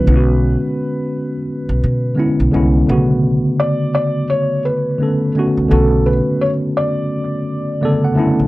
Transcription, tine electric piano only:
X:1
M:4/4
L:1/16
Q:"Swing 16ths" 1/4=85
K:Bdor
V:1 name="Tine electric piano"
z16 | z16 | z12 d f a2 |]
V:2 name="Tine electric piano"
[D,G,B,CEF]6 z6 [D,G,B,CE]2 [D,G,B,CE]2 | [C,D,A,B,F]6 z6 [D,A,B,CA]2 [D,A,B,CF]2 | [D,A,B,CF]6 z6 [C,D,A,B,A]2 [D,A,B,CE]2 |]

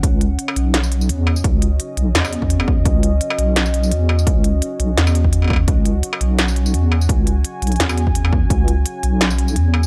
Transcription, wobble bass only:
X:1
M:4/4
L:1/8
Q:"Swing 16ths" 1/4=170
K:C#m
V:1 name="Wobble bass" clef=bass
C,,2 z B,,,3 E,,2 | C,,2 z B,,, E,,4 | C,,2 z B,,,3 E,,2 | C,,2 z B,,, E,,4 |
C,,2 z B,,,3 E,,2 | C,,2 z B,,, E,,4 | C,,2 z B,,,3 E,,2 |]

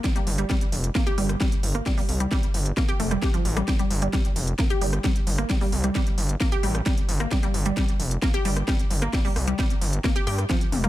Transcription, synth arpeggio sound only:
X:1
M:4/4
L:1/16
Q:1/4=132
K:Gm
V:1 name="Synth arpeggio sound" clef=bass
G, G, z G, G, z3 B, G G, z G, z2 B, | G, G, z G, G, z3 B, G A, G, G F, z G, | G, G, z G, G, z3 B, G G, z G, z2 B, | G, G, z G, G, z3 B, G G, z G, z2 B, |
G, G, z G, G, z3 B, G G, z G, z2 B, | G, G, z G, G, z3 B, G G z F, z2 B, |]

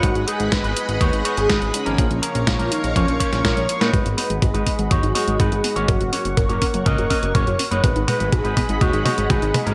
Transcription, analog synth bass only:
X:1
M:4/4
L:1/16
Q:1/4=123
K:G#dor
V:1 name="Analog synth bass" clef=bass
G,,, G,,, z G,,, G,,, G,,, z G,,, D,, G,,, z G,,, G,,, G,,, z G,,, | A,,, A,,, z A,,, A,,, A,,, z A,,, E,, A,,, z A,,, A,, A,,, z A,, | G,,, G,,, z G,,, G,,, G,,, z G,,, D,, G,,, z G,,, G,,, G,,, z G,,, | F,,, F,,, z F,,, F,,, F,,, z F,,, C,, F,,, z F,,, F,,, F,,, z F,,, |
G,,, G,,, z G,,, G,,, G,,, z G,,, D,, G,,, z G,,, G,,, G,,, z G,,, |]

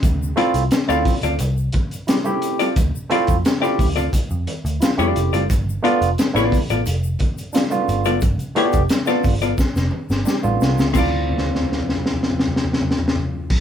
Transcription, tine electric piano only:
X:1
M:4/4
L:1/16
Q:1/4=88
K:Ddor
V:1 name="Tine electric piano"
z2 [A,CEF] z2 [A,CEF] z2 [EF] z3 [EG] [A,CEG]2 z | z2 [A,CEF] z2 [A,CEG] z2 [EF] z3 [EF] [A,CEG]2 z | z2 [A,B,DF] z2 [A,B,DE] z2 [DF] z3 [DF] [A,B,DF]2 z | z2 [A,B,DG] z2 [A,B,DF] z2 [DF] z3 [DG] [A,B,DF]2 z |
[A,CEF]16 |]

